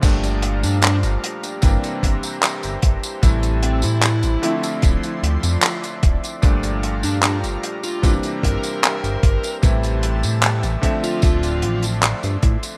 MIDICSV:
0, 0, Header, 1, 6, 480
1, 0, Start_track
1, 0, Tempo, 800000
1, 18, Time_signature, 4, 2, 24, 8
1, 7665, End_track
2, 0, Start_track
2, 0, Title_t, "Analog synth pad"
2, 0, Program_c, 0, 89
2, 20, Note_on_c, 0, 74, 78
2, 20, Note_on_c, 0, 77, 81
2, 21, Note_on_c, 0, 67, 82
2, 21, Note_on_c, 0, 82, 93
2, 969, Note_off_c, 0, 74, 0
2, 970, Note_off_c, 0, 77, 0
2, 977, Note_on_c, 0, 76, 79
2, 980, Note_on_c, 0, 72, 81
2, 1921, Note_off_c, 0, 82, 0
2, 1932, Note_on_c, 0, 81, 90
2, 2636, Note_off_c, 0, 67, 0
2, 2642, Note_off_c, 0, 72, 0
2, 2648, Note_off_c, 0, 81, 0
2, 2658, Note_on_c, 0, 84, 99
2, 2660, Note_on_c, 0, 53, 88
2, 2660, Note_on_c, 0, 74, 85
2, 3834, Note_off_c, 0, 76, 0
2, 3846, Note_off_c, 0, 84, 0
2, 3847, Note_off_c, 0, 53, 0
2, 3860, Note_on_c, 0, 67, 84
2, 3860, Note_on_c, 0, 82, 98
2, 3861, Note_on_c, 0, 77, 75
2, 4797, Note_off_c, 0, 74, 0
2, 4810, Note_off_c, 0, 77, 0
2, 4810, Note_off_c, 0, 82, 0
2, 4819, Note_on_c, 0, 82, 95
2, 4820, Note_on_c, 0, 72, 83
2, 4820, Note_on_c, 0, 76, 79
2, 5769, Note_off_c, 0, 76, 0
2, 5769, Note_off_c, 0, 82, 0
2, 5780, Note_on_c, 0, 81, 89
2, 5781, Note_on_c, 0, 76, 74
2, 6475, Note_off_c, 0, 67, 0
2, 6482, Note_off_c, 0, 72, 0
2, 6492, Note_off_c, 0, 81, 0
2, 6499, Note_on_c, 0, 74, 81
2, 6500, Note_on_c, 0, 53, 89
2, 6501, Note_on_c, 0, 84, 94
2, 7665, Note_off_c, 0, 53, 0
2, 7665, Note_off_c, 0, 74, 0
2, 7665, Note_off_c, 0, 76, 0
2, 7665, Note_off_c, 0, 84, 0
2, 7665, End_track
3, 0, Start_track
3, 0, Title_t, "Lead electric guitar"
3, 0, Program_c, 1, 29
3, 381, Note_on_c, 1, 62, 87
3, 456, Note_off_c, 1, 62, 0
3, 492, Note_on_c, 1, 62, 78
3, 574, Note_off_c, 1, 62, 0
3, 2177, Note_on_c, 1, 60, 89
3, 2276, Note_off_c, 1, 60, 0
3, 2302, Note_on_c, 1, 64, 87
3, 2708, Note_off_c, 1, 64, 0
3, 4223, Note_on_c, 1, 62, 85
3, 4297, Note_off_c, 1, 62, 0
3, 4342, Note_on_c, 1, 62, 76
3, 4419, Note_off_c, 1, 62, 0
3, 4702, Note_on_c, 1, 65, 89
3, 4868, Note_off_c, 1, 65, 0
3, 5061, Note_on_c, 1, 70, 90
3, 5733, Note_off_c, 1, 70, 0
3, 6622, Note_on_c, 1, 65, 86
3, 7102, Note_off_c, 1, 65, 0
3, 7665, End_track
4, 0, Start_track
4, 0, Title_t, "Electric grand piano"
4, 0, Program_c, 2, 2
4, 0, Control_c, 2, 64, 127
4, 8, Note_on_c, 2, 46, 82
4, 13, Note_on_c, 2, 53, 77
4, 17, Note_on_c, 2, 55, 75
4, 23, Note_on_c, 2, 57, 73
4, 25, Control_c, 2, 64, 0
4, 27, Note_on_c, 2, 62, 89
4, 141, Control_c, 2, 64, 127
4, 926, Note_off_c, 2, 46, 0
4, 929, Note_off_c, 2, 53, 0
4, 931, Note_off_c, 2, 55, 0
4, 934, Note_off_c, 2, 57, 0
4, 936, Note_off_c, 2, 62, 0
4, 969, Note_on_c, 2, 48, 80
4, 973, Note_on_c, 2, 52, 73
4, 978, Note_on_c, 2, 55, 74
4, 983, Note_on_c, 2, 58, 74
4, 986, Control_c, 2, 64, 0
4, 986, Note_on_c, 2, 62, 86
4, 1090, Control_c, 2, 64, 127
4, 1887, Note_off_c, 2, 48, 0
4, 1889, Note_off_c, 2, 52, 0
4, 1891, Note_off_c, 2, 55, 0
4, 1894, Note_off_c, 2, 58, 0
4, 1895, Note_off_c, 2, 62, 0
4, 1930, Note_on_c, 2, 48, 81
4, 1934, Note_on_c, 2, 52, 75
4, 1939, Note_on_c, 2, 55, 74
4, 1944, Note_on_c, 2, 57, 76
4, 1947, Control_c, 2, 64, 0
4, 1948, Note_on_c, 2, 64, 93
4, 2042, Control_c, 2, 64, 127
4, 2607, Note_off_c, 2, 48, 0
4, 2609, Note_off_c, 2, 52, 0
4, 2612, Note_off_c, 2, 55, 0
4, 2614, Note_off_c, 2, 57, 0
4, 2616, Note_off_c, 2, 64, 0
4, 2651, Note_on_c, 2, 50, 91
4, 2655, Note_on_c, 2, 53, 84
4, 2660, Note_on_c, 2, 57, 87
4, 2665, Note_on_c, 2, 60, 86
4, 2667, Control_c, 2, 64, 0
4, 2670, Note_on_c, 2, 64, 99
4, 2753, Control_c, 2, 64, 127
4, 3808, Note_off_c, 2, 50, 0
4, 3810, Note_off_c, 2, 53, 0
4, 3813, Note_off_c, 2, 57, 0
4, 3815, Note_off_c, 2, 60, 0
4, 3817, Note_off_c, 2, 64, 0
4, 3851, Note_on_c, 2, 46, 81
4, 3856, Note_on_c, 2, 53, 77
4, 3858, Note_on_c, 2, 55, 77
4, 3863, Note_on_c, 2, 57, 77
4, 3866, Control_c, 2, 64, 0
4, 3868, Note_on_c, 2, 62, 87
4, 3988, Control_c, 2, 64, 127
4, 4768, Note_off_c, 2, 46, 0
4, 4770, Note_off_c, 2, 53, 0
4, 4772, Note_off_c, 2, 55, 0
4, 4774, Note_off_c, 2, 57, 0
4, 4777, Note_off_c, 2, 62, 0
4, 4812, Note_on_c, 2, 48, 83
4, 4817, Note_on_c, 2, 52, 73
4, 4822, Note_on_c, 2, 55, 76
4, 4826, Control_c, 2, 64, 0
4, 4826, Note_on_c, 2, 58, 75
4, 4831, Note_on_c, 2, 62, 93
4, 4935, Control_c, 2, 64, 127
4, 5728, Note_off_c, 2, 48, 0
4, 5731, Note_off_c, 2, 52, 0
4, 5733, Note_off_c, 2, 55, 0
4, 5735, Note_off_c, 2, 58, 0
4, 5738, Note_off_c, 2, 62, 0
4, 5771, Note_on_c, 2, 48, 84
4, 5775, Note_on_c, 2, 52, 75
4, 5780, Note_on_c, 2, 55, 76
4, 5784, Note_on_c, 2, 57, 74
4, 5785, Control_c, 2, 64, 0
4, 5790, Note_on_c, 2, 64, 91
4, 5877, Control_c, 2, 64, 127
4, 6448, Note_off_c, 2, 48, 0
4, 6450, Note_off_c, 2, 52, 0
4, 6452, Note_off_c, 2, 55, 0
4, 6454, Note_off_c, 2, 57, 0
4, 6457, Note_off_c, 2, 64, 0
4, 6488, Note_on_c, 2, 50, 90
4, 6493, Note_on_c, 2, 53, 84
4, 6497, Note_on_c, 2, 57, 87
4, 6503, Note_on_c, 2, 60, 85
4, 6506, Control_c, 2, 64, 0
4, 6508, Note_on_c, 2, 76, 100
4, 6624, Control_c, 2, 64, 127
4, 7647, Note_off_c, 2, 50, 0
4, 7649, Note_off_c, 2, 53, 0
4, 7651, Note_off_c, 2, 57, 0
4, 7654, Note_off_c, 2, 60, 0
4, 7656, Note_off_c, 2, 76, 0
4, 7665, End_track
5, 0, Start_track
5, 0, Title_t, "Analog synth bass"
5, 0, Program_c, 3, 38
5, 18, Note_on_c, 3, 31, 99
5, 380, Note_on_c, 3, 43, 91
5, 389, Note_off_c, 3, 31, 0
5, 620, Note_on_c, 3, 31, 104
5, 629, Note_off_c, 3, 43, 0
5, 704, Note_off_c, 3, 31, 0
5, 978, Note_on_c, 3, 31, 94
5, 1066, Note_off_c, 3, 31, 0
5, 1219, Note_on_c, 3, 31, 98
5, 1306, Note_off_c, 3, 31, 0
5, 1582, Note_on_c, 3, 31, 91
5, 1665, Note_off_c, 3, 31, 0
5, 1698, Note_on_c, 3, 31, 76
5, 1785, Note_off_c, 3, 31, 0
5, 1937, Note_on_c, 3, 33, 96
5, 2300, Note_on_c, 3, 45, 90
5, 2309, Note_off_c, 3, 33, 0
5, 2541, Note_on_c, 3, 33, 106
5, 2550, Note_off_c, 3, 45, 0
5, 2624, Note_off_c, 3, 33, 0
5, 2898, Note_on_c, 3, 26, 86
5, 2986, Note_off_c, 3, 26, 0
5, 3139, Note_on_c, 3, 38, 103
5, 3226, Note_off_c, 3, 38, 0
5, 3260, Note_on_c, 3, 41, 103
5, 3344, Note_off_c, 3, 41, 0
5, 3618, Note_on_c, 3, 26, 91
5, 3705, Note_off_c, 3, 26, 0
5, 3858, Note_on_c, 3, 31, 100
5, 4220, Note_on_c, 3, 43, 93
5, 4229, Note_off_c, 3, 31, 0
5, 4460, Note_on_c, 3, 31, 109
5, 4469, Note_off_c, 3, 43, 0
5, 4544, Note_off_c, 3, 31, 0
5, 4820, Note_on_c, 3, 31, 92
5, 4906, Note_off_c, 3, 31, 0
5, 5060, Note_on_c, 3, 31, 94
5, 5146, Note_off_c, 3, 31, 0
5, 5421, Note_on_c, 3, 31, 88
5, 5504, Note_off_c, 3, 31, 0
5, 5539, Note_on_c, 3, 31, 80
5, 5626, Note_off_c, 3, 31, 0
5, 5780, Note_on_c, 3, 33, 97
5, 6141, Note_on_c, 3, 45, 93
5, 6150, Note_off_c, 3, 33, 0
5, 6379, Note_on_c, 3, 33, 104
5, 6388, Note_off_c, 3, 45, 0
5, 6463, Note_off_c, 3, 33, 0
5, 6738, Note_on_c, 3, 26, 88
5, 6978, Note_on_c, 3, 33, 97
5, 6987, Note_off_c, 3, 26, 0
5, 7284, Note_off_c, 3, 33, 0
5, 7341, Note_on_c, 3, 43, 103
5, 7424, Note_off_c, 3, 43, 0
5, 7458, Note_on_c, 3, 45, 81
5, 7545, Note_off_c, 3, 45, 0
5, 7665, End_track
6, 0, Start_track
6, 0, Title_t, "Drums"
6, 15, Note_on_c, 9, 42, 82
6, 16, Note_on_c, 9, 54, 50
6, 17, Note_on_c, 9, 49, 98
6, 18, Note_on_c, 9, 36, 118
6, 75, Note_off_c, 9, 42, 0
6, 76, Note_off_c, 9, 54, 0
6, 77, Note_off_c, 9, 49, 0
6, 78, Note_off_c, 9, 36, 0
6, 140, Note_on_c, 9, 54, 33
6, 141, Note_on_c, 9, 42, 57
6, 200, Note_off_c, 9, 54, 0
6, 201, Note_off_c, 9, 42, 0
6, 255, Note_on_c, 9, 42, 99
6, 315, Note_off_c, 9, 42, 0
6, 381, Note_on_c, 9, 54, 53
6, 382, Note_on_c, 9, 42, 62
6, 441, Note_off_c, 9, 54, 0
6, 442, Note_off_c, 9, 42, 0
6, 490, Note_on_c, 9, 42, 75
6, 498, Note_on_c, 9, 54, 47
6, 501, Note_on_c, 9, 39, 126
6, 550, Note_off_c, 9, 42, 0
6, 558, Note_off_c, 9, 54, 0
6, 561, Note_off_c, 9, 39, 0
6, 619, Note_on_c, 9, 42, 54
6, 619, Note_on_c, 9, 54, 28
6, 679, Note_off_c, 9, 42, 0
6, 679, Note_off_c, 9, 54, 0
6, 742, Note_on_c, 9, 42, 104
6, 802, Note_off_c, 9, 42, 0
6, 860, Note_on_c, 9, 42, 54
6, 861, Note_on_c, 9, 54, 49
6, 920, Note_off_c, 9, 42, 0
6, 921, Note_off_c, 9, 54, 0
6, 971, Note_on_c, 9, 54, 48
6, 975, Note_on_c, 9, 42, 81
6, 978, Note_on_c, 9, 36, 117
6, 1031, Note_off_c, 9, 54, 0
6, 1035, Note_off_c, 9, 42, 0
6, 1038, Note_off_c, 9, 36, 0
6, 1101, Note_on_c, 9, 42, 55
6, 1102, Note_on_c, 9, 54, 29
6, 1161, Note_off_c, 9, 42, 0
6, 1162, Note_off_c, 9, 54, 0
6, 1218, Note_on_c, 9, 36, 63
6, 1222, Note_on_c, 9, 42, 98
6, 1278, Note_off_c, 9, 36, 0
6, 1282, Note_off_c, 9, 42, 0
6, 1338, Note_on_c, 9, 42, 53
6, 1339, Note_on_c, 9, 54, 61
6, 1398, Note_off_c, 9, 42, 0
6, 1399, Note_off_c, 9, 54, 0
6, 1455, Note_on_c, 9, 42, 76
6, 1456, Note_on_c, 9, 39, 127
6, 1459, Note_on_c, 9, 54, 49
6, 1515, Note_off_c, 9, 42, 0
6, 1516, Note_off_c, 9, 39, 0
6, 1519, Note_off_c, 9, 54, 0
6, 1578, Note_on_c, 9, 54, 29
6, 1581, Note_on_c, 9, 42, 52
6, 1638, Note_off_c, 9, 54, 0
6, 1641, Note_off_c, 9, 42, 0
6, 1694, Note_on_c, 9, 42, 106
6, 1698, Note_on_c, 9, 36, 109
6, 1754, Note_off_c, 9, 42, 0
6, 1758, Note_off_c, 9, 36, 0
6, 1820, Note_on_c, 9, 42, 56
6, 1821, Note_on_c, 9, 54, 60
6, 1880, Note_off_c, 9, 42, 0
6, 1881, Note_off_c, 9, 54, 0
6, 1936, Note_on_c, 9, 42, 80
6, 1937, Note_on_c, 9, 54, 48
6, 1938, Note_on_c, 9, 36, 127
6, 1996, Note_off_c, 9, 42, 0
6, 1997, Note_off_c, 9, 54, 0
6, 1998, Note_off_c, 9, 36, 0
6, 2057, Note_on_c, 9, 42, 55
6, 2058, Note_on_c, 9, 54, 28
6, 2117, Note_off_c, 9, 42, 0
6, 2118, Note_off_c, 9, 54, 0
6, 2176, Note_on_c, 9, 42, 110
6, 2236, Note_off_c, 9, 42, 0
6, 2292, Note_on_c, 9, 54, 53
6, 2299, Note_on_c, 9, 42, 60
6, 2352, Note_off_c, 9, 54, 0
6, 2359, Note_off_c, 9, 42, 0
6, 2415, Note_on_c, 9, 39, 124
6, 2416, Note_on_c, 9, 42, 82
6, 2417, Note_on_c, 9, 54, 46
6, 2475, Note_off_c, 9, 39, 0
6, 2476, Note_off_c, 9, 42, 0
6, 2477, Note_off_c, 9, 54, 0
6, 2536, Note_on_c, 9, 42, 62
6, 2537, Note_on_c, 9, 54, 29
6, 2596, Note_off_c, 9, 42, 0
6, 2597, Note_off_c, 9, 54, 0
6, 2658, Note_on_c, 9, 42, 107
6, 2718, Note_off_c, 9, 42, 0
6, 2780, Note_on_c, 9, 42, 56
6, 2781, Note_on_c, 9, 54, 54
6, 2840, Note_off_c, 9, 42, 0
6, 2841, Note_off_c, 9, 54, 0
6, 2893, Note_on_c, 9, 42, 84
6, 2899, Note_on_c, 9, 36, 119
6, 2899, Note_on_c, 9, 54, 42
6, 2953, Note_off_c, 9, 42, 0
6, 2959, Note_off_c, 9, 36, 0
6, 2959, Note_off_c, 9, 54, 0
6, 3020, Note_on_c, 9, 54, 30
6, 3021, Note_on_c, 9, 42, 61
6, 3080, Note_off_c, 9, 54, 0
6, 3081, Note_off_c, 9, 42, 0
6, 3141, Note_on_c, 9, 42, 99
6, 3201, Note_off_c, 9, 42, 0
6, 3259, Note_on_c, 9, 42, 56
6, 3260, Note_on_c, 9, 54, 55
6, 3319, Note_off_c, 9, 42, 0
6, 3320, Note_off_c, 9, 54, 0
6, 3372, Note_on_c, 9, 54, 49
6, 3374, Note_on_c, 9, 39, 127
6, 3378, Note_on_c, 9, 42, 77
6, 3432, Note_off_c, 9, 54, 0
6, 3434, Note_off_c, 9, 39, 0
6, 3438, Note_off_c, 9, 42, 0
6, 3501, Note_on_c, 9, 42, 55
6, 3503, Note_on_c, 9, 54, 28
6, 3561, Note_off_c, 9, 42, 0
6, 3563, Note_off_c, 9, 54, 0
6, 3617, Note_on_c, 9, 42, 106
6, 3619, Note_on_c, 9, 36, 113
6, 3677, Note_off_c, 9, 42, 0
6, 3679, Note_off_c, 9, 36, 0
6, 3741, Note_on_c, 9, 42, 53
6, 3748, Note_on_c, 9, 54, 58
6, 3801, Note_off_c, 9, 42, 0
6, 3808, Note_off_c, 9, 54, 0
6, 3854, Note_on_c, 9, 54, 42
6, 3859, Note_on_c, 9, 36, 127
6, 3860, Note_on_c, 9, 42, 82
6, 3914, Note_off_c, 9, 54, 0
6, 3919, Note_off_c, 9, 36, 0
6, 3920, Note_off_c, 9, 42, 0
6, 3979, Note_on_c, 9, 54, 29
6, 3981, Note_on_c, 9, 42, 59
6, 4039, Note_off_c, 9, 54, 0
6, 4041, Note_off_c, 9, 42, 0
6, 4100, Note_on_c, 9, 42, 96
6, 4160, Note_off_c, 9, 42, 0
6, 4220, Note_on_c, 9, 54, 58
6, 4226, Note_on_c, 9, 42, 52
6, 4279, Note_off_c, 9, 54, 0
6, 4286, Note_off_c, 9, 42, 0
6, 4336, Note_on_c, 9, 39, 127
6, 4338, Note_on_c, 9, 42, 74
6, 4340, Note_on_c, 9, 54, 48
6, 4396, Note_off_c, 9, 39, 0
6, 4398, Note_off_c, 9, 42, 0
6, 4400, Note_off_c, 9, 54, 0
6, 4462, Note_on_c, 9, 42, 54
6, 4462, Note_on_c, 9, 54, 27
6, 4522, Note_off_c, 9, 42, 0
6, 4522, Note_off_c, 9, 54, 0
6, 4580, Note_on_c, 9, 42, 103
6, 4640, Note_off_c, 9, 42, 0
6, 4700, Note_on_c, 9, 54, 52
6, 4702, Note_on_c, 9, 42, 49
6, 4760, Note_off_c, 9, 54, 0
6, 4762, Note_off_c, 9, 42, 0
6, 4820, Note_on_c, 9, 36, 122
6, 4820, Note_on_c, 9, 54, 44
6, 4821, Note_on_c, 9, 42, 74
6, 4880, Note_off_c, 9, 36, 0
6, 4880, Note_off_c, 9, 54, 0
6, 4881, Note_off_c, 9, 42, 0
6, 4938, Note_on_c, 9, 42, 58
6, 4940, Note_on_c, 9, 54, 29
6, 4998, Note_off_c, 9, 42, 0
6, 5000, Note_off_c, 9, 54, 0
6, 5060, Note_on_c, 9, 36, 66
6, 5066, Note_on_c, 9, 42, 93
6, 5120, Note_off_c, 9, 36, 0
6, 5126, Note_off_c, 9, 42, 0
6, 5180, Note_on_c, 9, 54, 57
6, 5183, Note_on_c, 9, 42, 57
6, 5240, Note_off_c, 9, 54, 0
6, 5243, Note_off_c, 9, 42, 0
6, 5297, Note_on_c, 9, 42, 80
6, 5300, Note_on_c, 9, 54, 43
6, 5304, Note_on_c, 9, 39, 127
6, 5357, Note_off_c, 9, 42, 0
6, 5360, Note_off_c, 9, 54, 0
6, 5364, Note_off_c, 9, 39, 0
6, 5424, Note_on_c, 9, 42, 57
6, 5424, Note_on_c, 9, 54, 24
6, 5484, Note_off_c, 9, 42, 0
6, 5484, Note_off_c, 9, 54, 0
6, 5538, Note_on_c, 9, 42, 94
6, 5540, Note_on_c, 9, 36, 112
6, 5598, Note_off_c, 9, 42, 0
6, 5600, Note_off_c, 9, 36, 0
6, 5660, Note_on_c, 9, 42, 57
6, 5664, Note_on_c, 9, 54, 49
6, 5720, Note_off_c, 9, 42, 0
6, 5724, Note_off_c, 9, 54, 0
6, 5775, Note_on_c, 9, 54, 41
6, 5779, Note_on_c, 9, 36, 127
6, 5781, Note_on_c, 9, 42, 69
6, 5835, Note_off_c, 9, 54, 0
6, 5839, Note_off_c, 9, 36, 0
6, 5841, Note_off_c, 9, 42, 0
6, 5900, Note_on_c, 9, 54, 25
6, 5905, Note_on_c, 9, 42, 62
6, 5960, Note_off_c, 9, 54, 0
6, 5965, Note_off_c, 9, 42, 0
6, 6017, Note_on_c, 9, 42, 97
6, 6077, Note_off_c, 9, 42, 0
6, 6140, Note_on_c, 9, 42, 53
6, 6140, Note_on_c, 9, 54, 53
6, 6200, Note_off_c, 9, 42, 0
6, 6200, Note_off_c, 9, 54, 0
6, 6256, Note_on_c, 9, 39, 124
6, 6258, Note_on_c, 9, 42, 75
6, 6259, Note_on_c, 9, 54, 43
6, 6316, Note_off_c, 9, 39, 0
6, 6318, Note_off_c, 9, 42, 0
6, 6319, Note_off_c, 9, 54, 0
6, 6379, Note_on_c, 9, 42, 58
6, 6379, Note_on_c, 9, 54, 26
6, 6439, Note_off_c, 9, 42, 0
6, 6439, Note_off_c, 9, 54, 0
6, 6497, Note_on_c, 9, 42, 94
6, 6499, Note_on_c, 9, 36, 63
6, 6557, Note_off_c, 9, 42, 0
6, 6559, Note_off_c, 9, 36, 0
6, 6622, Note_on_c, 9, 54, 53
6, 6623, Note_on_c, 9, 42, 52
6, 6682, Note_off_c, 9, 54, 0
6, 6683, Note_off_c, 9, 42, 0
6, 6732, Note_on_c, 9, 54, 42
6, 6738, Note_on_c, 9, 36, 124
6, 6740, Note_on_c, 9, 42, 75
6, 6792, Note_off_c, 9, 54, 0
6, 6798, Note_off_c, 9, 36, 0
6, 6800, Note_off_c, 9, 42, 0
6, 6858, Note_on_c, 9, 42, 59
6, 6859, Note_on_c, 9, 54, 28
6, 6918, Note_off_c, 9, 42, 0
6, 6919, Note_off_c, 9, 54, 0
6, 6974, Note_on_c, 9, 42, 89
6, 7034, Note_off_c, 9, 42, 0
6, 7095, Note_on_c, 9, 42, 62
6, 7103, Note_on_c, 9, 54, 56
6, 7155, Note_off_c, 9, 42, 0
6, 7163, Note_off_c, 9, 54, 0
6, 7213, Note_on_c, 9, 42, 78
6, 7216, Note_on_c, 9, 39, 127
6, 7216, Note_on_c, 9, 54, 42
6, 7273, Note_off_c, 9, 42, 0
6, 7276, Note_off_c, 9, 39, 0
6, 7276, Note_off_c, 9, 54, 0
6, 7338, Note_on_c, 9, 54, 27
6, 7341, Note_on_c, 9, 42, 54
6, 7398, Note_off_c, 9, 54, 0
6, 7401, Note_off_c, 9, 42, 0
6, 7455, Note_on_c, 9, 42, 88
6, 7458, Note_on_c, 9, 36, 114
6, 7515, Note_off_c, 9, 42, 0
6, 7518, Note_off_c, 9, 36, 0
6, 7577, Note_on_c, 9, 42, 56
6, 7579, Note_on_c, 9, 54, 53
6, 7637, Note_off_c, 9, 42, 0
6, 7639, Note_off_c, 9, 54, 0
6, 7665, End_track
0, 0, End_of_file